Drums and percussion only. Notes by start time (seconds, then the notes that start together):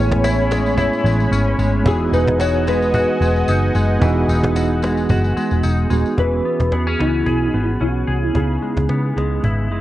0.11 cajon bass, cajon slap
0.24 cajon slap, tambourine
0.51 cajon slap, tambourine
0.66 tambourine
0.78 cajon bass, tambourine
0.93 tambourine
1.06 tambourine
1.20 cajon slap, tambourine
1.32 cajon slap, tambourine
1.46 cajon slap
1.59 cajon slap, tambourine
1.74 cajon slap
1.86 cajon bass, tambourine
2.01 cajon slap
2.13 tambourine
2.28 cajon bass, cajon slap
2.40 cajon slap, tambourine
2.67 cajon slap, tambourine
2.82 tambourine
2.94 cajon bass, tambourine
3.09 cajon slap
3.20 cajon slap, tambourine
3.36 cajon slap, tambourine
3.48 tambourine
3.75 tambourine
3.90 cajon slap
4.02 cajon bass, tambourine
4.29 tambourine
4.43 cajon bass, cajon slap
4.56 cajon slap, tambourine
4.82 cajon slap, tambourine
4.97 cajon slap, tambourine
5.09 cajon bass, tambourine
5.24 tambourine
5.36 cajon slap, tambourine
5.51 cajon slap, tambourine
5.63 tambourine
5.90 tambourine
6.06 tambourine
6.18 cajon bass
6.46 cajon slap
6.60 cajon bass, cajon slap
6.72 cajon slap
7.00 cajon slap
7.26 cajon bass
7.53 cajon slap
7.80 cajon slap
8.08 cajon slap
8.35 cajon bass
8.63 cajon slap
8.77 cajon bass, cajon slap
8.89 cajon slap
9.18 cajon slap
9.44 cajon bass
9.70 cajon slap